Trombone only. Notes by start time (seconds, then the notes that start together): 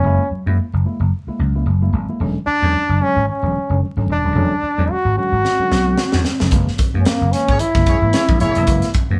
Already playing: C#4
2.47 D4
3.02 C#4
3.29 C#4
4.12 D4
4.91 F#4
5.18 F#4
7.00 C#4
7.06 A#3
7.32 C#4
7.60 E4
8.41 E4